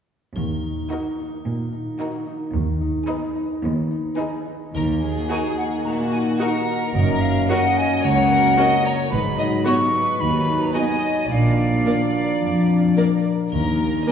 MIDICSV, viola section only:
0, 0, Header, 1, 2, 480
1, 0, Start_track
1, 0, Key_signature, -6, "minor"
1, 0, Tempo, 548948
1, 316, Time_signature, 4, 2, 24, 8
1, 5594, Tempo, 543478
1, 9434, Tempo, 556070
1, 12346, End_track
2, 0, Start_track
2, 0, Title_t, "Viola section"
2, 0, Program_c, 0, 48
2, 792, Note_on_c, 0, 63, 37
2, 1152, Note_off_c, 0, 63, 0
2, 1739, Note_on_c, 0, 63, 41
2, 2096, Note_off_c, 0, 63, 0
2, 2693, Note_on_c, 0, 63, 49
2, 3053, Note_off_c, 0, 63, 0
2, 3655, Note_on_c, 0, 63, 54
2, 4023, Note_off_c, 0, 63, 0
2, 4632, Note_on_c, 0, 66, 36
2, 4635, Note_on_c, 0, 63, 35
2, 4702, Note_off_c, 0, 66, 0
2, 4705, Note_off_c, 0, 63, 0
2, 5591, Note_on_c, 0, 66, 41
2, 5592, Note_on_c, 0, 63, 41
2, 5662, Note_off_c, 0, 63, 0
2, 5662, Note_off_c, 0, 66, 0
2, 6561, Note_on_c, 0, 66, 43
2, 6564, Note_on_c, 0, 61, 44
2, 6632, Note_off_c, 0, 66, 0
2, 6634, Note_off_c, 0, 61, 0
2, 7517, Note_on_c, 0, 66, 48
2, 7519, Note_on_c, 0, 61, 47
2, 7588, Note_off_c, 0, 66, 0
2, 7590, Note_off_c, 0, 61, 0
2, 8468, Note_on_c, 0, 66, 42
2, 8469, Note_on_c, 0, 59, 40
2, 8539, Note_off_c, 0, 66, 0
2, 8540, Note_off_c, 0, 59, 0
2, 9426, Note_on_c, 0, 66, 37
2, 9428, Note_on_c, 0, 59, 37
2, 9496, Note_off_c, 0, 66, 0
2, 9497, Note_off_c, 0, 59, 0
2, 10390, Note_on_c, 0, 58, 36
2, 10390, Note_on_c, 0, 70, 33
2, 10459, Note_off_c, 0, 58, 0
2, 10459, Note_off_c, 0, 70, 0
2, 11353, Note_on_c, 0, 58, 36
2, 11354, Note_on_c, 0, 70, 37
2, 11422, Note_off_c, 0, 58, 0
2, 11423, Note_off_c, 0, 70, 0
2, 12305, Note_on_c, 0, 70, 36
2, 12308, Note_on_c, 0, 58, 37
2, 12346, Note_off_c, 0, 58, 0
2, 12346, Note_off_c, 0, 70, 0
2, 12346, End_track
0, 0, End_of_file